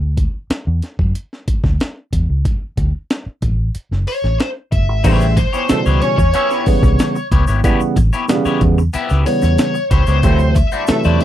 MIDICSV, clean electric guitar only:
0, 0, Header, 1, 3, 480
1, 0, Start_track
1, 0, Tempo, 648649
1, 1812, Time_signature, 4, 2, 24, 8
1, 8321, End_track
2, 0, Start_track
2, 0, Title_t, "Clean electric guitar"
2, 0, Program_c, 0, 27
2, 3730, Note_on_c, 0, 59, 103
2, 3734, Note_on_c, 0, 64, 112
2, 3738, Note_on_c, 0, 67, 104
2, 3740, Note_on_c, 0, 73, 109
2, 3881, Note_off_c, 0, 59, 0
2, 3883, Note_off_c, 0, 64, 0
2, 3885, Note_off_c, 0, 67, 0
2, 3886, Note_off_c, 0, 73, 0
2, 4089, Note_on_c, 0, 73, 57
2, 4094, Note_on_c, 0, 67, 55
2, 4097, Note_on_c, 0, 64, 48
2, 4099, Note_on_c, 0, 59, 46
2, 4180, Note_off_c, 0, 73, 0
2, 4182, Note_off_c, 0, 67, 0
2, 4184, Note_off_c, 0, 64, 0
2, 4185, Note_off_c, 0, 59, 0
2, 4336, Note_on_c, 0, 73, 85
2, 4339, Note_on_c, 0, 67, 72
2, 4344, Note_on_c, 0, 64, 70
2, 4347, Note_on_c, 0, 59, 79
2, 4445, Note_off_c, 0, 59, 0
2, 4447, Note_off_c, 0, 73, 0
2, 4449, Note_off_c, 0, 64, 0
2, 4449, Note_off_c, 0, 67, 0
2, 4692, Note_on_c, 0, 59, 91
2, 4696, Note_on_c, 0, 64, 91
2, 4699, Note_on_c, 0, 67, 87
2, 4701, Note_on_c, 0, 76, 93
2, 4914, Note_off_c, 0, 59, 0
2, 4916, Note_off_c, 0, 64, 0
2, 4917, Note_off_c, 0, 67, 0
2, 4918, Note_off_c, 0, 76, 0
2, 5413, Note_on_c, 0, 59, 74
2, 5417, Note_on_c, 0, 64, 71
2, 5419, Note_on_c, 0, 67, 83
2, 5422, Note_on_c, 0, 73, 78
2, 5501, Note_off_c, 0, 59, 0
2, 5503, Note_off_c, 0, 64, 0
2, 5504, Note_off_c, 0, 67, 0
2, 5506, Note_off_c, 0, 73, 0
2, 5532, Note_on_c, 0, 73, 62
2, 5536, Note_on_c, 0, 67, 55
2, 5539, Note_on_c, 0, 64, 47
2, 5544, Note_on_c, 0, 59, 42
2, 5621, Note_off_c, 0, 73, 0
2, 5623, Note_off_c, 0, 67, 0
2, 5624, Note_off_c, 0, 64, 0
2, 5627, Note_off_c, 0, 59, 0
2, 5653, Note_on_c, 0, 59, 92
2, 5656, Note_on_c, 0, 64, 102
2, 5659, Note_on_c, 0, 67, 100
2, 5663, Note_on_c, 0, 73, 104
2, 5766, Note_off_c, 0, 59, 0
2, 5767, Note_off_c, 0, 64, 0
2, 5769, Note_off_c, 0, 67, 0
2, 5771, Note_off_c, 0, 73, 0
2, 6015, Note_on_c, 0, 73, 59
2, 6018, Note_on_c, 0, 67, 59
2, 6020, Note_on_c, 0, 64, 60
2, 6025, Note_on_c, 0, 59, 56
2, 6102, Note_off_c, 0, 73, 0
2, 6104, Note_off_c, 0, 67, 0
2, 6105, Note_off_c, 0, 64, 0
2, 6107, Note_off_c, 0, 59, 0
2, 6256, Note_on_c, 0, 73, 91
2, 6260, Note_on_c, 0, 67, 84
2, 6264, Note_on_c, 0, 64, 82
2, 6266, Note_on_c, 0, 59, 76
2, 6367, Note_off_c, 0, 73, 0
2, 6369, Note_off_c, 0, 67, 0
2, 6371, Note_off_c, 0, 64, 0
2, 6372, Note_off_c, 0, 59, 0
2, 6612, Note_on_c, 0, 59, 92
2, 6616, Note_on_c, 0, 64, 90
2, 6621, Note_on_c, 0, 67, 101
2, 6623, Note_on_c, 0, 76, 84
2, 6833, Note_off_c, 0, 59, 0
2, 6835, Note_off_c, 0, 64, 0
2, 6837, Note_off_c, 0, 67, 0
2, 6838, Note_off_c, 0, 76, 0
2, 7331, Note_on_c, 0, 59, 65
2, 7336, Note_on_c, 0, 64, 66
2, 7338, Note_on_c, 0, 67, 78
2, 7341, Note_on_c, 0, 73, 77
2, 7419, Note_off_c, 0, 59, 0
2, 7422, Note_off_c, 0, 64, 0
2, 7423, Note_off_c, 0, 67, 0
2, 7424, Note_off_c, 0, 73, 0
2, 7451, Note_on_c, 0, 73, 70
2, 7457, Note_on_c, 0, 67, 61
2, 7459, Note_on_c, 0, 64, 58
2, 7463, Note_on_c, 0, 59, 55
2, 7539, Note_off_c, 0, 73, 0
2, 7542, Note_off_c, 0, 67, 0
2, 7543, Note_off_c, 0, 64, 0
2, 7545, Note_off_c, 0, 59, 0
2, 7571, Note_on_c, 0, 57, 106
2, 7573, Note_on_c, 0, 64, 100
2, 7577, Note_on_c, 0, 66, 97
2, 7581, Note_on_c, 0, 72, 121
2, 7684, Note_off_c, 0, 57, 0
2, 7685, Note_off_c, 0, 64, 0
2, 7686, Note_off_c, 0, 66, 0
2, 7688, Note_off_c, 0, 72, 0
2, 7933, Note_on_c, 0, 72, 63
2, 7937, Note_on_c, 0, 66, 67
2, 7941, Note_on_c, 0, 64, 53
2, 7944, Note_on_c, 0, 57, 47
2, 8020, Note_off_c, 0, 72, 0
2, 8022, Note_off_c, 0, 66, 0
2, 8024, Note_off_c, 0, 64, 0
2, 8026, Note_off_c, 0, 57, 0
2, 8177, Note_on_c, 0, 72, 91
2, 8181, Note_on_c, 0, 66, 80
2, 8185, Note_on_c, 0, 64, 80
2, 8187, Note_on_c, 0, 57, 72
2, 8284, Note_off_c, 0, 57, 0
2, 8287, Note_off_c, 0, 64, 0
2, 8287, Note_off_c, 0, 72, 0
2, 8288, Note_off_c, 0, 66, 0
2, 8321, End_track
3, 0, Start_track
3, 0, Title_t, "Muted clean electric guitar strokes"
3, 3971, Note_on_c, 9, 29, 48
3, 4045, Note_off_c, 9, 29, 0
3, 4213, Note_on_c, 9, 29, 42
3, 4287, Note_off_c, 9, 29, 0
3, 4454, Note_on_c, 9, 29, 42
3, 4528, Note_off_c, 9, 29, 0
3, 4576, Note_on_c, 9, 29, 44
3, 4650, Note_off_c, 9, 29, 0
3, 4935, Note_on_c, 9, 29, 42
3, 5009, Note_off_c, 9, 29, 0
3, 5056, Note_on_c, 9, 29, 54
3, 5130, Note_off_c, 9, 29, 0
3, 5176, Note_on_c, 9, 29, 52
3, 5250, Note_off_c, 9, 29, 0
3, 5294, Note_on_c, 9, 29, 42
3, 5368, Note_off_c, 9, 29, 0
3, 5893, Note_on_c, 9, 29, 52
3, 5967, Note_off_c, 9, 29, 0
3, 6141, Note_on_c, 9, 29, 41
3, 6215, Note_off_c, 9, 29, 0
3, 6499, Note_on_c, 9, 29, 60
3, 6573, Note_off_c, 9, 29, 0
3, 6855, Note_on_c, 9, 29, 37
3, 6929, Note_off_c, 9, 29, 0
3, 6973, Note_on_c, 9, 29, 42
3, 7047, Note_off_c, 9, 29, 0
3, 7093, Note_on_c, 9, 29, 49
3, 7167, Note_off_c, 9, 29, 0
3, 7211, Note_on_c, 9, 29, 46
3, 7285, Note_off_c, 9, 29, 0
3, 7812, Note_on_c, 9, 29, 59
3, 7886, Note_off_c, 9, 29, 0
3, 8053, Note_on_c, 9, 29, 50
3, 8127, Note_off_c, 9, 29, 0
3, 8293, Note_on_c, 9, 29, 37
3, 8321, Note_off_c, 9, 29, 0
3, 8321, End_track
0, 0, End_of_file